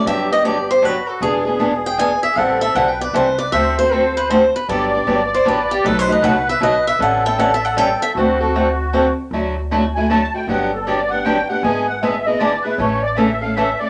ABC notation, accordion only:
X:1
M:3/4
L:1/8
Q:"Swing" 1/4=156
K:G
V:1 name="Accordion"
G4 F2 | ^G6 | A2 B4 | c4- c z |
d6 | B6 | A6 | F4- F z |
[K:D] z3 ^g a =g | f A d f g f | ^g f e _e d B | c d e =f e d |]